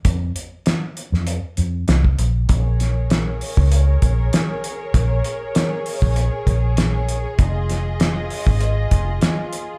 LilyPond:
<<
  \new Staff \with { instrumentName = "String section" } { \time 4/4 \key f \minor \tempo 4 = 98 r1 | <aes' bes' des''>1~ | <aes' bes' des''>1 | <f' ees''>1 | }
  \new Staff \with { instrumentName = "Fingered electric bass" } { \clef bass \time 4/4 \key f \minor f,8 r4 r16 f,8 r16 f,8 c,8 bes,,8 | bes,,4.~ bes,,16 des,8. bes,,8 r4 | bes,,8 r4 r16 bes,,8 r16 bes,,4. | f,,4.~ f,,16 aes,,8. f,,8 r4 | }
  \new DrumStaff \with { instrumentName = "Drums" } \drummode { \time 4/4 <hh bd>8 hh8 <hh sn>8 hh16 sn16 hh8 hh8 <hh sn>16 bd16 hh8 | <hh bd>8 <hh sn>8 <hh sn>8 hho16 bd16 hh8 <hh bd>8 <hh sn>8 hh8 | <hh bd>8 hh8 <hh sn>8 hho16 bd16 hh8 <hh bd>8 <hh sn>8 hh8 | <hh bd>8 <hh sn>8 <hh sn>8 hho16 bd16 hh8 <hh bd>8 <hh sn>8 hh8 | }
>>